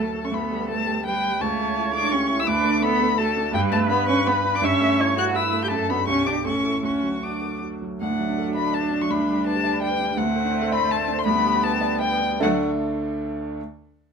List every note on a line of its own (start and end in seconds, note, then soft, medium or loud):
0.00 0.29 D2 loud
0.00 0.35 F#3 medium
0.00 0.14 A3 medium
0.00 0.36 F#4 medium
0.00 0.25 A4 medium
0.00 1.04 A4 medium
0.00 0.26 A5 medium
0.14 0.33 A3 medium
0.24 0.28 C#4 medium
0.24 0.35 C#6 loud
0.31 1.37 D2 loud
0.31 0.71 B3 medium
0.31 0.68 B5 medium
0.51 0.80 G3 medium
0.68 1.05 A3 loud
0.68 0.97 B3 medium
0.68 1.04 A5 loud
0.86 1.15 G4 medium
1.04 1.41 G3 medium
1.04 1.33 B3 medium
1.04 1.42 B4 loud
1.04 1.42 G5 loud
1.23 1.41 G3 medium
1.41 2.44 C#2 loud
1.41 1.94 A3 loud
1.41 2.46 C#5 loud
1.41 1.93 A5 loud
1.58 1.87 A3 medium
1.76 2.05 E4 medium
1.93 2.14 D4 loud
1.93 2.22 A4 medium
1.93 2.13 D6 loud
2.12 2.42 C#4 loud
2.12 2.40 G4 medium
2.12 2.41 C#6 loud
2.29 2.47 E4 medium
2.39 2.50 E4 loud
2.39 2.48 E6 loud
2.47 3.52 D2 loud
2.47 2.84 D4 loud
2.47 2.81 B4 loud
2.47 2.84 D6 loud
2.64 2.93 A3 medium
2.82 3.18 B3 loud
2.82 3.12 D4 medium
2.82 3.17 A4 loud
2.82 3.19 B5 loud
3.01 3.29 A4 medium
3.18 3.54 A3 loud
3.18 3.47 F#4 medium
3.18 3.53 A4 loud
3.18 3.53 A5 loud
3.37 3.55 D4 medium
3.53 4.59 G2 loud
3.53 3.75 G3 loud
3.53 4.65 B4 loud
3.53 3.61 G5 loud
3.71 3.93 A3 loud
3.71 4.00 B3 medium
3.71 3.79 A5 loud
3.89 4.08 B3 loud
3.89 4.18 D4 medium
3.89 4.08 B5 loud
4.07 4.16 C#4 loud
4.07 4.37 B4 loud
4.07 4.28 C#6 loud
4.25 4.35 B3 medium
4.25 4.55 G4 medium
4.25 4.57 B5 loud
4.44 4.63 D4 medium
4.54 4.64 D4 loud
4.54 4.66 D6 loud
4.62 5.67 G2 loud
4.62 5.18 C#4 loud
4.62 5.01 E5 loud
4.62 5.17 C#6 loud
4.81 5.10 A3 medium
4.99 5.28 E4 medium
4.99 5.34 C#5 loud
5.18 5.38 F#4 loud
5.18 5.46 A4 medium
5.18 5.25 F#6 loud
5.35 5.64 E4 medium
5.35 5.65 E4 loud
5.35 5.70 B4 loud
5.35 5.62 E6 loud
5.53 5.71 A3 medium
5.63 5.74 G4 loud
5.63 5.70 G6 loud
5.70 6.06 F#2 loud
5.70 5.89 A3 loud
5.70 6.07 A4 loud
5.70 5.91 A5 loud
5.89 5.97 B3 loud
5.89 6.06 D4 medium
5.89 6.06 F#4 medium
5.89 6.07 B5 loud
6.08 6.44 B1 medium
6.08 6.26 C#4 loud
6.08 6.46 G4 medium
6.08 6.28 C#6 loud
6.25 6.42 D4 medium
6.25 6.34 D4 loud
6.25 6.43 G4 medium
6.25 6.45 D6 loud
6.44 6.82 A1 medium
6.44 6.83 C#4 loud
6.44 6.85 A4 medium
6.44 6.84 C#6 loud
6.63 6.81 E4 medium
6.63 6.81 A4 medium
6.83 7.96 D2 medium
6.83 7.22 C#4 loud
6.83 7.81 F#4 medium
6.83 7.24 C#6 medium
7.03 7.34 F#3 medium
7.22 7.62 D4 medium
7.22 7.54 F#4 medium
7.22 7.62 D6 medium
7.42 7.73 A4 medium
7.62 7.93 F#4 medium
7.82 8.01 F#3 medium
8.00 9.07 D2 loud
8.00 9.12 A3 medium
8.00 10.19 D4 loud
8.00 8.52 F#5 loud
8.10 8.25 A2 medium
8.19 8.34 F#3 medium
8.29 8.43 D4 medium
8.38 8.53 A4 medium
8.47 8.61 F#4 medium
8.55 8.71 D5 medium
8.55 8.75 B5 loud
8.66 8.80 A5 medium
8.73 8.88 D5 medium
8.73 9.03 A5 loud
8.82 8.97 A4 medium
8.91 9.06 D4 medium
9.01 9.10 F#3 medium
9.01 9.12 C#6 loud
9.10 10.14 D2 loud
9.10 10.20 G3 medium
9.10 9.46 B5 loud
9.19 9.34 D3 medium
9.28 9.43 G3 medium
9.37 9.52 D4 medium
9.46 9.60 B4 medium
9.46 9.81 A5 loud
9.55 9.70 G4 medium
9.64 9.78 D5 medium
9.73 9.87 B5 medium
9.81 9.96 D5 medium
9.81 10.19 G5 loud
9.90 10.05 B4 medium
10.01 10.14 D4 medium
10.08 10.17 G3 medium
10.17 11.22 D2 loud
10.17 11.29 A3 loud
10.17 11.25 C4 loud
10.17 10.74 F#5 loud
10.27 10.41 A2 medium
10.35 10.50 A3 medium
10.45 10.59 D4 medium
10.53 10.68 C5 medium
10.62 10.77 A4 medium
10.72 10.86 D5 loud
10.72 10.93 B5 loud
10.80 10.95 C6 loud
10.89 11.04 D5 medium
10.89 11.20 A5 loud
10.98 11.13 C5 medium
11.08 11.22 D4 medium
11.17 11.26 A3 medium
11.17 11.25 C6 loud
11.25 12.38 D2 loud
11.25 12.23 G3 loud
11.25 12.20 B3 loud
11.25 11.65 B5 loud
11.35 11.50 D3 medium
11.44 11.59 G3 medium
11.54 11.69 D4 medium
11.63 11.79 B4 medium
11.63 12.01 A5 loud
11.72 11.88 G4 medium
11.81 11.97 D5 medium
11.91 12.07 B5 medium
12.01 12.17 D5 medium
12.01 12.41 G5 loud
12.11 12.27 B4 medium
12.21 12.37 D4 medium
12.32 12.42 G3 medium
12.40 12.63 D2 loud
12.40 12.63 D3 loud
12.40 12.64 F#3 loud
12.40 12.63 A3 loud
12.40 12.63 D4 loud
12.40 12.62 A4 loud
12.40 12.63 D5 loud
12.40 12.63 F#5 loud